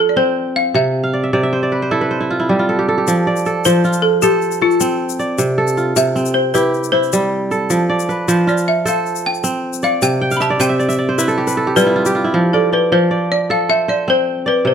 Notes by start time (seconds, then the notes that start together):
Already playing: F3 F4 A4 D5
0.09 D5
0.16 C4 C5
0.56 F5
0.74 C3 E5
1.04 F5
1.13 D5
1.23 E5
1.33 C3 D5
1.43 E5
1.53 C5
1.63 D5
1.72 B4
1.82 C5
1.91 E4 A4
2.01 B4
2.11 C5
2.21 E4
2.30 F4
2.40 E4
2.49 G3 G4
2.59 F4
2.69 A4
2.79 G4
2.89 A4
2.98 G4
3.07 F3, shaker
3.27 D5
3.36 shaker
3.46 A4, shaker
3.65 F3 C5, shaker
3.84 F4, shaker
3.93 shaker
4.02 A4
4.22 G4 A4 C5, shaker
4.42 shaker
4.51 shaker
4.61 F4 A4
4.71 shaker
4.80 C4, shaker
5.09 shaker
5.19 D5, shaker
5.38 C3, shaker
5.58 A4
5.67 shaker
5.77 F4, shaker
5.96 C3 E5, shaker
6.16 C4, shaker
6.26 shaker
6.34 C5
6.54 E4 G4 B4, shaker
6.74 shaker
6.84 shaker
6.92 E4 C5
7.03 shaker
7.13 G3, shaker
7.51 A4, shaker
7.70 F3, shaker
7.89 D5
8.00 shaker
8.09 B4, shaker
8.28 F3 C5, shaker
8.47 F4 D5, shaker
8.57 shaker
8.68 E5
8.85 A4 C5 F5, shaker
9.06 shaker
9.16 shaker
9.26 G5
9.34 shaker
9.44 C4, shaker
9.73 shaker
9.82 D5 F5, shaker
10.02 C3 G5, shaker
10.21 G5
10.31 F5, shaker
10.37 E5 B5, shaker
10.42 A5
10.50 D5
10.60 C3 C5 G5, shaker
10.69 E5
10.79 D5, shaker
10.89 E5, shaker
10.99 D5
11.09 C5
11.18 E4 B4, shaker
11.28 A4, shaker
11.38 G4
11.47 B4, shaker
11.57 A4
11.67 G4
11.76 G3 F4 B4, shaker
11.86 E4
11.96 F4
12.06 G4, shaker
12.15 F4
12.24 E4
12.34 F3
12.53 A4 D5
12.72 B4 D5
12.92 F3 C5
13.11 D5
13.32 D5
13.50 A4 F5
13.69 C5 E5
13.88 C5 D5
14.08 C4 C5
14.46 B4 D5
14.65 C3 C5